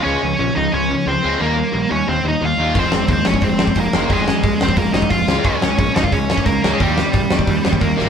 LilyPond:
<<
  \new Staff \with { instrumentName = "Lead electric guitar" } { \time 4/4 \key f \minor \tempo 4 = 178 <des' des''>4 <des' des''>8 <ees' ees''>8 <des' des''>4 <c' c''>4 | <bes bes'>4. <des' des''>8 <c' c''>8 <ees' ees''>8 <f' f''>4 | <c' c''>4 <c' c''>8 <des' des''>8 <c' c''>4 <bes bes'>4 | <aes aes'>4. <c' c''>8 <bes bes'>8 <ees' ees''>8 <f' f''>4 |
<des' des''>4 <des' des''>8 <ees' ees''>16 <f' f''>16 <des' des''>4 <bes bes'>8. <aes aes'>16 | <g g'>2. <bes bes'>4 | }
  \new Staff \with { instrumentName = "Distorted electric guitar" } { \clef bass \time 4/4 \key f \minor <des f aes>8 <des f>8 <des f>8 <des f>8 <des f>8 <des f>8 <des f>8 <des f aes>8 | <ees g bes>8 <ees g>8 <ees g>8 <ees g>8 <ees g>8 <ees g>8 <ees g>8 <ees g bes>8 | <f aes c'>8 <f aes>8 <f aes>8 <f aes>8 <f aes>8 <f aes>8 <f aes>8 <f aes c'>8 | <f aes c'>8 <f aes>8 <f aes>8 <f aes>8 <f aes>8 <f aes>8 <f aes>8 <des aes des'>8 |
<des aes des'>8 <des aes>8 <des aes>8 <des aes>8 <des aes>8 <des aes>8 <des aes>8 <des aes des'>8 | <ees g bes>8 <ees g>8 <ees g>8 <ees g>8 <ees g>8 <ees g>8 <ees g>8 <ees g bes>8 | }
  \new Staff \with { instrumentName = "Picked electric bass" } { \clef bass \time 4/4 \key f \minor des,8 des,8 bes,,8 des,8 des,4 des,8 des,8 | ees,4 bes,,8 ees,8 ees,8 ees,8 ees,8 ees,8 | f,,8 f,,8 ees,8 f,,8 f,,4 f,,8 f,,8 | f,,4 c,8 f,,8 f,,8 f,,8 f,,8 des,8 |
des,8 des,8 bes,,8 des,8 des,4 des,8 des,8 | ees,4 bes,,8 ees,8 ees,8 ees,8 ees,8 aes,,8 | }
  \new DrumStaff \with { instrumentName = "Drums" } \drummode { \time 4/4 r4 r4 r4 r4 | r4 r4 r4 r4 | <hho bd>8 sn8 <hho bd>8 sn16 bd16 <hho bd>8 sn16 bd16 <hho bd>8 sn8 | <hho bd>8 sn8 <hho bd>8 sn16 bd16 <hho bd>8 sn16 bd16 <hho bd>8 sn8 |
<hho bd>8 sn8 <hho bd>8 sn16 bd16 <hho bd>8 sn16 bd16 <hho bd>8 sn8 | <hho bd>8 sn8 <hho bd>8 sn16 bd16 <hho bd>8 sn16 bd16 <hho bd>8 sn8 | }
>>